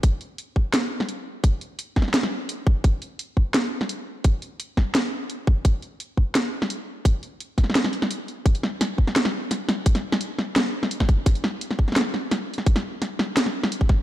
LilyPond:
\new DrumStaff \with { instrumentName = "Drums" } \drummode { \time 4/4 \tempo 4 = 171 <hh bd>8 hh8 hh8 bd8 <hh sn>8. sn16 hh4 | <hh bd>8 hh8 \tuplet 3/2 { hh16 r16 r16 <bd sn>16 sn16 sn16 } <hh sn>16 sn8. hh8 bd8 | <hh bd>8 hh8 hh8 bd8 <hh sn>8. sn16 hh4 | <hh bd>8 hh8 hh8 <bd sn>8 <hh sn>4 hh8 bd8 |
<hh bd>8 hh8 hh8 bd8 <hh sn>8. sn16 hh4 | <hh bd>8 hh8 \tuplet 3/2 { hh16 r16 r16 <hh bd sn>16 sn16 sn16 } <hh sn>16 sn16 hh16 sn16 hh8 hh8 | <hh bd>16 hh16 sn8 <hh sn>8 bd16 sn16 <hh sn>16 sn8. <hh sn>8 <hh sn>8 | <hh bd>16 <hh sn>8 sn16 hh8 sn8 <hh sn>8. sn16 hh16 <bd sn>16 <hh bd>8 |
<hh bd sn>16 hh16 sn8 hh16 sn16 bd16 sn32 sn32 <hh sn>32 sn16. sn8 <hh sn>8 r32 hh32 sn16 | <hh bd>16 <hh sn>8. <hh sn>8 sn8 <hh sn>16 sn8 sn16 hh16 bd16 <bd sn>8 | }